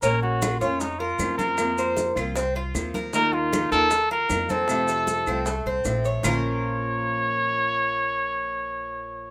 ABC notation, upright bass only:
X:1
M:4/4
L:1/8
Q:1/4=155
K:Bbm
V:1 name="Upright bass" clef=bass
B,,,3 F,,3 F,,2- | F,,3 C,,3 E,,2- | E,,3 E,,3 F,,2- | F,,3 C,,2 C,, B,,,2 |
B,,,8- | B,,,8 |]